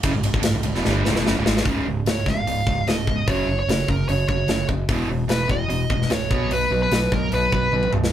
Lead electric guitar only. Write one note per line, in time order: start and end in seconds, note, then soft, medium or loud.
2.11 2.29 C#5 medium
2.29 2.88 F5 loud
2.88 3.29 D#5 medium
3.28 3.58 C#5 medium
3.59 3.89 C#5 medium
3.90 4.08 A#4 medium
4.09 4.27 C#5 medium
4.28 4.66 C#5 medium
5.30 5.51 B4 medium
5.50 6.11 D#5 loud
6.12 6.53 C#5 medium
6.52 6.81 B4 medium
6.83 7.13 B4 medium
7.14 7.33 A#4 medium
7.34 7.52 B4 medium
7.54 7.91 B4 medium